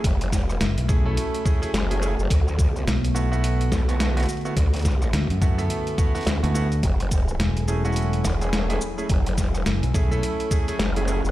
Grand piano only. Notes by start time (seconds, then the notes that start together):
0.89 A3 C#4 E4 G#4
1.05 A3 C#4 E4 A4
1.45 A3 C#4 E4 G#4
1.62 A3 C#4 E4 G#4
1.90 A3 C#4 E4 G#4
2.01 A3 C#4 E4 G#4
3.15 A3 B3 E4 F#4
3.32 A3 B3 E4 F#4
3.88 A3 B3 E4 F#4
4.17 A3 B3 E4 F#4
4.45 A3 B3 E4 F#4
5.41 A3 B3 E4 F#4
5.58 A3 B3 E4 A4
5.98 A3 B3 E4 F#4
6.15 A3 B3 E4 F#4
6.43 A3 B3 E4 F#4
6.54 A3 B3 E4 F#4
7.68 A3 C#4 E4 G#4
7.85 A3 C#4 E4 F#4
8.41 A3 C#4 E4 G#4
8.70 A3 C#4 E4 G#4
8.98 A3 C#4 E4 G#4
9.94 A3 C#4 E4 G#4
10.11 A3 C#4 E4 A4
10.51 A3 C#4 E4 G#4
10.68 A3 C#4 E4 G#4
10.97 A3 C#4 E4 G#4
11.08 A3 C#4 E4 G#4